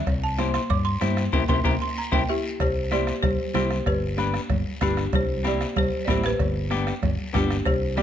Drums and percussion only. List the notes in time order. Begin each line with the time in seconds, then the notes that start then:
0.07 bombo low, bombo rim, cowbell, high conga, long guiro
0.39 bombo rim, cowbell, high conga, short guiro
0.54 bombo rim, short guiro
0.70 bombo low, bombo rim, cowbell, long guiro
1.01 bombo rim, cowbell, high conga, short guiro
1.17 bombo rim, short guiro
1.32 bombo low, high conga, high timbale, long guiro
1.49 bombo low, high conga, high timbale, long guiro
1.65 bombo low, high conga, high timbale, long guiro
2.12 bombo low, high conga, high timbale, long guiro
2.60 bombo low, bombo rim, cowbell, high conga, long guiro
2.91 bombo rim, high conga, short guiro
3.07 bombo rim, short guiro
3.23 bombo low, bombo rim, cowbell, high conga, low conga, long guiro
3.55 bombo rim, high conga, low conga, low timbale, short guiro
3.70 bombo rim, short guiro
3.86 bombo low, bombo rim, cowbell, high conga, long guiro
4.18 bombo rim, high conga, short guiro
4.34 bombo rim, short guiro
4.50 bombo low, bombo rim, cowbell, high conga, low conga, long guiro
4.81 bombo low, bombo rim, high conga, low timbale, short guiro
4.97 bombo rim, short guiro
5.13 bombo low, bombo rim, cowbell, high conga, low conga, long guiro
5.44 bombo rim, high conga, short guiro
5.60 bombo rim, short guiro
5.76 bombo low, bombo rim, cowbell, high conga, low conga, long guiro
6.08 bombo low, bombo rim, high conga, low conga, low timbale, short guiro
6.24 bombo rim, short guiro
6.39 bombo low, bombo rim, cowbell, high conga, long guiro
6.71 bombo rim, high conga, short guiro
6.87 bombo rim, short guiro
7.02 bombo low, bombo rim, cowbell, high conga, low conga, long guiro
7.34 bombo low, bombo rim, high conga, low timbale, short guiro
7.50 bombo rim, short guiro
7.66 bombo low, bombo rim, cowbell, high conga, long guiro
7.98 bombo rim, high conga, short guiro